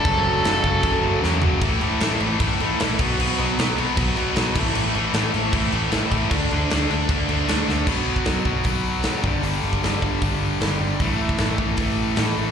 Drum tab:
CC |x---x---x-------|x-x-x-x-x-x-x-x-|x-x-x-x-x-x-x-x-|x-x-x-x-x-x-x-x-|
HH |----------------|----------------|----------------|----------------|
SD |----o-------o---|----o-------o---|----o-------o---|----o-------o---|
FT |--------------o-|----------------|----------------|----------------|
BD |o-----o-o-------|o-------o-----o-|--------o-----o-|--------o-----o-|

CC |x-x-x-x-x-x-x---|x---------------|----------------|----------------|
HH |----------------|----o---o---o---|o---o---o---o---|o---o---o---o---|
SD |----o-------o-o-|----o-------o---|----o-------o---|----o-------o---|
FT |----------------|----------------|----------------|----------------|
BD |o-------o-------|o--o--o-o-----o-|---o--o-o-------|o--o--o-o-------|